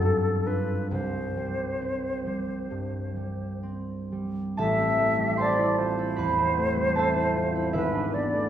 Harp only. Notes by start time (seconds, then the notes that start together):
0.02 G2
0.46 D4 F4
0.91 C2
1.37 G3
1.81 C4
2.26 G3
2.71 G2
3.16 G3
3.63 C4
4.12 G3
4.57 A1 A4 E5 A5
4.79 C4
4.99 A3
5.18 G3
5.36 C4 C5 C6
5.41 A5
5.59 E4
5.78 F4
5.99 E4
6.16 E2 B4 B5
6.37 C4
6.57 A3
6.76 G3
6.95 C4 A4 E5 A5
7.16 E4
7.36 F4
7.55 E4
7.73 G#1 E4 B4 E5
7.94 D4
8.14 B3
8.33 A3